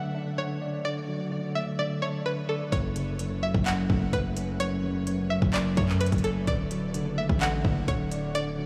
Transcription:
Already playing: tine electric piano D3 F#3 A3, synth pluck F#5
0.15 tine electric piano D4
0.38 tine electric piano D3, synth pluck C#5
0.62 tine electric piano D5
0.85 tine electric piano D3, synth pluck D5
1.08 tine electric piano F#3
1.32 tine electric piano D3
1.55 tine electric piano A3, synth pluck E5
1.79 tine electric piano D3, synth pluck D5
2.02 tine electric piano D4, synth pluck C#5
2.26 tine electric piano D3, synth pluck B4
2.49 synth pluck A4, tine electric piano D5
2.72 808-style bass F#1, tine electric piano F#2, synth pluck C#5, kick, closed hi-hat
2.96 tine electric piano C#3, closed hi-hat
3.19 tine electric piano F#2, closed hi-hat
3.43 tine electric piano F#3, synth pluck E5
3.54 808-style bass F#1, kick
3.66 tine electric piano F#2, synth pluck F#5, clap, closed hi-hat
3.90 808-style bass F#1, tine electric piano A3, kick
4.13 808-style bass F#1, tine electric piano F#2, synth pluck B4, kick, closed hi-hat
4.37 tine electric piano C#4, closed hi-hat
4.60 tine electric piano F#2, synth pluck C#5, closed hi-hat
4.84 tine electric piano C#3
5.07 tine electric piano F#2, closed hi-hat
5.30 tine electric piano F#3, synth pluck E5
5.42 808-style bass F#1, kick
5.54 tine electric piano F#2, synth pluck D5, clap, closed hi-hat
5.77 808-style bass F#2, tine electric piano A3, synth pluck C#5, kick, closed hi-hat
5.89 clap
6.00 tine electric piano F#2, synth pluck B4, closed hi-hat
6.06 closed hi-hat
6.12 808-style bass F#1, kick, closed hi-hat
6.18 closed hi-hat
6.24 tine electric piano C#4, synth pluck A4, closed hi-hat
6.47 808-style bass D1, tine electric piano D3, synth pluck D5, kick, closed hi-hat
6.71 tine electric piano F#3, closed hi-hat
6.94 808-style bass F#1, tine electric piano D3, closed hi-hat
7.18 tine electric piano A3, synth pluck E5
7.29 808-style bass A1, kick
7.41 tine electric piano D3, synth pluck F#5, clap, closed hi-hat
7.65 808-style bass F#1, tine electric piano D4, kick
7.88 808-style bass D1, tine electric piano D3, synth pluck C#5, kick, closed hi-hat
8.12 tine electric piano D5, closed hi-hat
8.35 tine electric piano D3, synth pluck D5, closed hi-hat
8.58 tine electric piano F#3

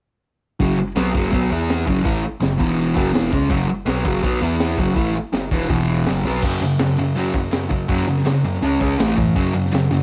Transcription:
0.60 tine electric piano F#1, distorted electric guitar F#2 C#3 F#3, kick, open hi-hat
0.77 tine electric piano F#1, muted distorted electric guitar stroke
0.96 tine electric piano B1, distorted electric guitar B2 F#3 B3, snare, open hi-hat
1.14 tine electric piano F#1, distorted electric guitar F#2 C#3 F#3, kick
1.31 tine electric piano B1, distorted electric guitar B2 F#3 B3, kick, open hi-hat
1.51 tine electric piano E2, distorted electric guitar E3 B3 E4
1.69 snare, open hi-hat
1.86 tine electric piano F#1, distorted electric guitar F#2 C#3 F#3, kick
2.03 tine electric piano A1, distorted electric guitar A2 E3 A3, kick, open hi-hat
2.22 tine electric piano F#1, muted distorted electric guitar stroke
2.40 tine electric piano F#1, distorted electric guitar F#2 C#3, snare, open hi-hat
2.58 tine electric piano E1, distorted electric guitar E2 B2 E3, kick
2.78 open hi-hat
2.95 tine electric piano F#1, distorted electric guitar F#2 C#3 F#3, kick
3.13 tine electric piano E1, distorted electric guitar E2 B2 E3, snare, open hi-hat
3.32 tine electric piano C#2, distorted electric guitar C#3 G#3 C#4, kick
3.49 tine electric piano F#1, distorted electric guitar F#2 C#3 F#3, kick, open hi-hat
3.68 tine electric piano F#1, muted distorted electric guitar stroke
3.86 tine electric piano B1, distorted electric guitar B2 F#3 B3, snare, open hi-hat
4.03 tine electric piano F#1, distorted electric guitar F#2 C#3 F#3, kick
4.23 tine electric piano B1, distorted electric guitar B2 F#3 B3, kick, open hi-hat
4.41 tine electric piano E2, distorted electric guitar E3 B3 E4
4.60 snare, open hi-hat
4.78 tine electric piano F#1, distorted electric guitar F#2 C#3 F#3, kick
4.96 tine electric piano A1, distorted electric guitar A2 E3 A3, kick, open hi-hat
5.15 tine electric piano F#1, muted distorted electric guitar stroke
5.33 tine electric piano F#1, distorted electric guitar F#2 C#3, snare, open hi-hat
5.51 tine electric piano E1, distorted electric guitar E2 B2 E3, kick
5.68 tine electric piano E1, distorted electric guitar E2 B2 E3, kick, open hi-hat
6.05 tine electric piano F#1, distorted electric guitar F#2 C#3 F#3, snare, open hi-hat
6.24 tine electric piano B1, distorted electric guitar B2 F#3 B3, snare
6.42 tine electric piano F#2, distorted electric guitar F#2 C#3 F#3, kick, crash
6.60 tine electric piano F#2, distorted electric guitar F#2 C#3, clap, open hi-hat
6.79 tine electric piano F#2, distorted electric guitar F#2 C#3, snare, clap, open hi-hat
6.97 tine electric piano F#2, distorted electric guitar F#2 C#3, open hi-hat
7.15 distorted electric guitar F#2 C#3 F#3, tine electric piano F#3, open hi-hat
7.34 distorted electric guitar F#2 C#3, tine electric piano F#2, kick, open hi-hat
7.52 tine electric piano F#2, distorted electric guitar F#2 C#3, snare, clap, open hi-hat
7.69 distorted electric guitar F#2 C#3, tine electric piano F#3, kick, open hi-hat
7.88 distorted electric guitar F#2 C#3 F#3, tine electric piano F#2, kick, open hi-hat
8.06 distorted electric guitar F#2 C#3, tine electric piano F#2, clap, open hi-hat
8.18 snare
8.25 distorted electric guitar F#2 C#3, tine electric piano C#3, snare, clap, open hi-hat
8.43 tine electric piano F#2, distorted electric guitar F#2 C#3, open hi-hat
8.54 snare
8.62 tine electric piano C#2, distorted electric guitar C#3 G#3 C#4, open hi-hat
8.80 tine electric piano C#2, distorted electric guitar C#3 G#3 C#4, kick, open hi-hat
8.98 tine electric piano A1, distorted electric guitar A2 E3 A3, snare, clap, open hi-hat
9.16 tine electric piano F#2, distorted electric guitar A2 E3, kick, open hi-hat
9.35 distorted electric guitar F#2 C#3 F#3, tine electric piano F#2, kick, open hi-hat
9.54 tine electric piano F#2, distorted electric guitar F#2 C#3, clap, open hi-hat
9.66 snare
9.72 tine electric piano F#2, distorted electric guitar F#2 C#3, snare, clap, open hi-hat
9.90 tine electric piano F#2, distorted electric guitar F#2 C#3, open hi-hat

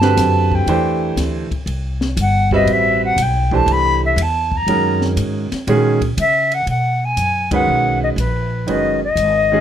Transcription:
Already playing: upright bass G2, flute A5
0.01 grand piano D3 C4 F#4 G4 B4, snare
0.17 upright bass F#2, snare, hi-hat pedal, ride
0.52 flute G5, kick
0.66 upright bass E2, grand piano E3 A3 D4 G4 C5, ride
1.16 upright bass D2, snare, hi-hat pedal, ride
1.51 muted upright bass stroke, kick, ride
1.66 upright bass C2, ride
2.01 snare
2.17 upright bass G1, hi-hat pedal, ride
2.21 flute F#5
2.51 grand piano G3 C4 F#4 B4 E5, flute D#5, kick
2.65 upright bass A1, ride
2.72 flute E5
3.05 flute F#5
3.16 upright bass B1, hi-hat pedal, ride
3.22 flute G5
3.51 grand piano E3 A3 D4 G4 C5, flute A5, kick
3.66 upright bass C2, ride
3.72 flute B5
4.05 flute E5
4.16 upright bass E2, hi-hat pedal, ride
4.22 flute A5
4.52 kick
4.57 flute A#5
4.67 upright bass F#2, grand piano D#3 G#3 C#4 F#4 A#4, ride
5.01 snare
5.17 upright bass G#2, hi-hat pedal, ride
5.52 muted upright bass stroke, snare, ride
5.67 upright bass A#2, grand piano D#3 G#3 C#4 F#4 G#4, ride
6.02 kick, ride
6.17 upright bass C#3, flute E5, hi-hat pedal, ride
6.52 flute F#5, ride
6.66 upright bass B2, flute F#5, ride
7.05 flute G#5
7.17 upright bass F#2, hi-hat pedal, ride
7.51 grand piano D#3 G#3 C#4 F#4 B4, flute F#5, kick, ride
7.68 upright bass B1
8.03 flute D#5
8.16 upright bass A#1, flute B4, hi-hat pedal, ride
8.66 upright bass F#1, grand piano D#3 G#3 C#4 F#4 B4, flute D#5, ride
9.04 flute D#5
9.16 upright bass G#1, hi-hat pedal, ride
9.52 grand piano D#3 G#3 C#4 F#4 G#4

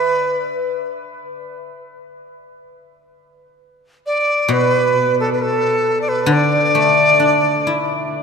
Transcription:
Already playing: dizi B4
4.06 dizi D5
4.48 guzheng B2
4.53 dizi B4
5.20 dizi A4
5.33 dizi B4
5.42 dizi A4
6.02 dizi D5
6.09 dizi B4
6.26 guzheng D3
6.32 dizi D5
6.75 guzheng A3
7.20 guzheng D4
7.67 guzheng E4

